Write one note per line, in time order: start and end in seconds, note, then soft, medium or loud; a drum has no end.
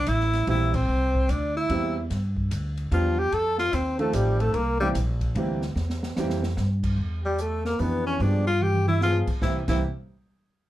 0.00 0.10 D4 medium
0.06 0.46 A1 loud
0.06 0.49 E4 medium
0.06 0.47 E5 medium
0.06 kick soft
0.06 hi-hat pedal medium
0.06 ride medium
0.20 snare soft
0.33 snare soft
0.33 ride soft
0.47 0.87 A#1 medium
0.47 0.71 E3 medium
0.47 0.71 G3 medium
0.47 0.71 A#3 medium
0.47 0.71 C4 medium
0.47 0.77 E4 medium
0.47 0.72 G4 medium
0.47 0.75 E5 medium
0.47 kick soft
0.47 ride medium
0.74 1.32 C4 medium
0.74 1.31 C5 medium
0.74 kick medium
0.74 crash medium
0.89 1.28 C2 medium
1.14 kick medium
1.29 1.68 D2 medium
1.29 1.56 D4 medium
1.29 1.56 D5 medium
1.29 kick soft
1.29 hi-hat pedal medium
1.29 ride medium
1.56 2.07 E4 medium
1.56 2.07 E5 medium
1.69 2.09 E2 medium
1.69 1.93 E3 medium
1.69 1.93 G3 soft
1.69 1.94 A#3 soft
1.69 1.94 C4 soft
1.69 1.94 G4 medium
1.69 kick soft
1.69 ride medium
2.10 2.50 G2 medium
2.10 kick soft
2.10 snare soft
2.10 ride medium
2.37 kick soft
2.51 2.90 D2 medium
2.51 kick soft
2.51 hi-hat pedal medium
2.51 ride medium
2.77 ride soft
2.91 3.31 E2 loud
2.91 3.15 F3 medium
2.91 3.15 G3 soft
2.91 3.16 B3 medium
2.91 3.16 D4 soft
2.91 3.21 F4 medium
2.91 3.16 G4 medium
2.91 3.20 F5 medium
2.91 kick soft
2.91 ride medium
3.19 3.35 G4 medium
3.19 3.34 G5 medium
3.32 3.72 F2 medium
3.32 3.59 A4 medium
3.32 3.57 A5 medium
3.32 kick soft
3.32 ride medium
3.58 3.76 F4 medium
3.58 3.74 F5 medium
3.58 snare soft
3.73 4.12 D#2 loud
3.73 3.99 C4 medium
3.73 3.97 C5 medium
3.73 kick soft
3.73 hi-hat pedal medium
3.73 ride medium
3.98 4.51 D#3 medium
3.98 4.51 F3 medium
3.98 4.51 A3 soft
3.98 4.16 A3 medium
3.98 4.52 C4 medium
3.98 4.52 F4 medium
3.98 4.15 A4 medium
3.98 ride soft
4.13 4.53 A1 medium
4.13 4.42 G3 medium
4.13 4.41 G4 medium
4.13 kick soft
4.13 hi-hat pedal medium
4.13 ride medium
4.40 4.57 A3 medium
4.40 4.54 A4 medium
4.40 ride soft
4.52 4.93 C2 medium
4.52 4.80 A#3 medium
4.52 4.79 A#4 medium
4.52 kick soft
4.52 ride medium
4.80 4.94 E3 medium
4.80 4.89 G3 medium
4.80 4.94 G3 medium
4.80 4.94 A#3 medium
4.80 4.94 C4 medium
4.80 4.93 G4 medium
4.80 4.94 G4 medium
4.95 5.34 A#1 loud
4.95 kick soft
4.95 hi-hat pedal medium
4.95 ride medium
5.21 kick medium
5.21 ride soft
5.35 5.75 D2 loud
5.35 5.59 E3 medium
5.35 5.59 G3 medium
5.35 5.60 A#3 medium
5.35 5.60 C4 medium
5.35 5.60 G4 medium
5.35 kick soft
5.35 ride medium
5.62 snare soft
5.75 6.15 E2 medium
5.75 snare soft
5.90 snare soft
6.03 snare medium
6.16 6.56 F2 medium
6.16 6.41 E3 medium
6.16 6.41 G3 medium
6.16 6.41 A#3 medium
6.16 6.41 C4 medium
6.16 6.41 G4 medium
6.16 snare medium
6.16 hi-hat pedal medium
6.30 snare medium
6.43 snare medium
6.57 6.97 G2 medium
6.57 snare medium
6.83 kick medium
6.83 crash medium
6.98 7.75 E2 medium
6.98 kick soft
7.24 7.43 G3 medium
7.24 7.42 G4 medium
7.38 7.65 A3 medium
7.38 7.66 A4 medium
7.38 closed hi-hat medium
7.65 7.82 A#3 medium
7.65 7.81 A#4 medium
7.65 snare soft
7.79 8.17 F2 medium
7.79 8.20 E3 medium
7.79 8.20 B3 soft
7.79 8.06 B3 medium
7.79 8.20 D4 soft
7.79 8.20 G4 medium
7.79 8.05 B4 medium
7.79 open hi-hat soft
8.06 8.23 C#4 medium
8.06 8.23 C#5 medium
8.20 9.23 G2 medium
8.20 8.44 F3 medium
8.20 8.44 G#3 medium
8.20 8.44 B3 medium
8.20 8.46 D4 medium
8.20 8.44 G4 medium
8.20 8.46 D5 medium
8.20 kick soft
8.20 open hi-hat soft
8.47 8.64 F4 medium
8.47 8.65 F5 medium
8.61 8.87 G4 medium
8.61 8.88 G5 medium
8.61 high tom soft
8.74 high tom soft
8.88 9.01 E4 medium
8.88 9.01 E5 medium
8.88 high tom medium
9.01 9.25 F3 medium
9.01 9.25 G#3 medium
9.01 9.25 B3 soft
9.01 9.18 F4 medium
9.01 9.25 G#4 medium
9.01 9.26 F5 medium
9.01 snare medium
9.27 muted upright bass stroke soft
9.27 kick medium
9.27 crash medium
9.41 9.56 C2 medium
9.41 9.57 E3 medium
9.41 9.58 A#3 medium
9.41 9.58 C4 medium
9.41 9.57 E4 medium
9.41 9.58 G4 medium
9.41 9.57 E5 medium
9.41 kick medium
9.41 snare medium
9.68 9.81 C2 medium
9.68 9.81 E3 medium
9.68 9.81 A#3 medium
9.68 9.81 C4 medium
9.68 9.82 E4 medium
9.68 9.82 G4 medium
9.68 9.82 E5 medium
9.68 kick medium
9.68 snare medium
9.68 crash medium